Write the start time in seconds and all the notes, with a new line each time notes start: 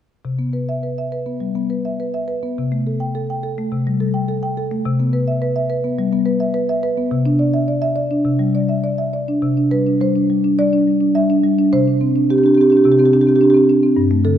0.25 C3
0.39 B3
0.53 B4
0.69 E5
0.83 B4
0.98 E5
1.12 B4
1.26 B3
1.40 G3
1.55 B3
1.70 B4
1.85 E5
2.00 B4
2.14 E5
2.28 B4
2.43 B3
2.58 C3
2.72 A3
2.87 A4
3.00 G5
3.15 A4
3.30 G5
3.43 A4
3.58 A3
3.72 C3
3.87 G3
4.00 A4
4.14 G5
4.29 A4
4.43 G5
4.57 A4
4.71 A3
4.85 C3
5.00 B3
5.13 B4
5.27 E5
5.42 B4
5.56 E5
5.70 B4
5.84 B3
5.99 G3
6.12 B3
6.26 B4
6.40 E5
6.54 B4
6.69 E5
6.83 B4
6.97 B3
7.11 C3
7.26 D4
7.39 D5
7.54 E5
7.68 D5
7.82 E5
7.96 D5
8.11 D4
8.25 C3
8.39 G3
8.55 D5
8.69 E5
8.84 D5
8.98 E5
9.13 D5
9.28 D4
9.42 C3
9.57 D4
9.71 G3 B4
9.87 D4
10.01 G3 C5
10.15 D4
10.30 G3
10.44 D4
10.59 G3 D5
10.73 D4
10.87 G3
11.01 D4
11.15 G3 E5
11.30 D4
11.43 G3
11.58 D4
11.73 C3 C5
11.88 D4
12.01 C4
12.16 D4
12.30 C4 G4
12.38 G4
12.44 D4 G4
12.54 C4 G4
12.61 G4
12.70 D4 G4
12.77 G4
12.84 C3 G4
12.92 G4
12.99 C4 G4
13.06 G4
13.13 D4 G4
13.21 G4
13.27 C4 G4
13.36 G4
13.41 D4 G4
13.50 G4
13.54 C4 G4
13.69 D4
13.83 C4
13.97 G2
14.11 A3
14.24 D3 A4